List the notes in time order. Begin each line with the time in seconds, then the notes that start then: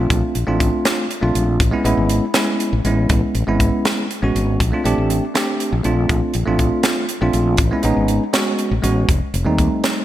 Already playing: A3 C4 D4 F4
0.10 A#1, kick, closed hi-hat
0.35 A#1, closed hi-hat
0.47 A1 A3 C4 D4 F4
0.60 kick, closed hi-hat
0.85 snare, closed hi-hat
1.11 closed hi-hat
1.22 A#1 A3 C4 D4 F4
1.35 A#1, closed hi-hat
1.60 A1, kick, closed hi-hat
1.71 G#3 B3 C#4 E4
1.84 A1 G#3 B3 C#4 E4, closed hi-hat
1.97 G#1
2.09 closed hi-hat
2.34 G#3 B3 C#4 E4, snare, closed hi-hat
2.60 closed hi-hat
2.73 A1
2.85 A1 G#3 B3 C#4 E4, closed hi-hat
3.09 A1, kick, closed hi-hat
3.35 A1, closed hi-hat
3.47 G#1 G#3 B3 C#4 E4
3.60 kick, closed hi-hat
3.85 snare, closed hi-hat
4.11 closed hi-hat
4.22 A1 G#3 B3 C#4 F#4
4.35 G#1, closed hi-hat
4.60 A#1, kick, closed hi-hat
4.72 A3 C4 D4 F4
4.84 A#1 A3 C4 D4 G4, closed hi-hat
4.98 A1
5.10 closed hi-hat
5.34 A3 C4 D4 G4, snare, closed hi-hat
5.60 closed hi-hat
5.73 A#1
5.83 A#1 A3 C4 D4 F4, closed hi-hat
6.09 A#1, kick, closed hi-hat
6.34 A#1, closed hi-hat
6.46 A1 A3 C4 D4 F4
6.59 kick, closed hi-hat
6.83 snare, closed hi-hat
7.09 closed hi-hat
7.21 A#1 A3 C4 D4 F4
7.33 A#1, closed hi-hat
7.57 A1, kick, closed hi-hat
7.71 G#3 B3 C#4 E4
7.83 A1 G#3 B3 C#4 D#4, closed hi-hat
7.97 G#1
8.08 closed hi-hat
8.33 G#3 B3 C#4 F#4, snare, closed hi-hat
8.59 closed hi-hat
8.71 A1
8.82 A1 G#3 B3 C#4 F#4, closed hi-hat
9.09 F1, kick, closed hi-hat
9.34 F1, closed hi-hat
9.45 D#2 G3 A3 C4 D#4
9.58 kick, closed hi-hat
9.84 snare, closed hi-hat